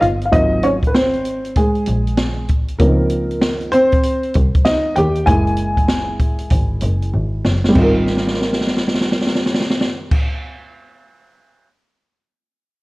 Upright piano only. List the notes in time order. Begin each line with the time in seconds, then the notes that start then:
0.01 F4 F5
0.25 F5
0.31 F#3 A#3 C4 D#4 F4 D#5
0.64 C#4 C#5
0.87 B4
0.95 C4 C5
1.57 G#3 G#4
2.79 F3 A#3 C4 D#4 A#4
3.72 C4 C5
4.65 D#4 D#5
4.96 G4 G5
5.26 G#3 A#3 E4 G#4 G#5
7.68 G3 C4
7.75 D#4 F4
7.81 A#4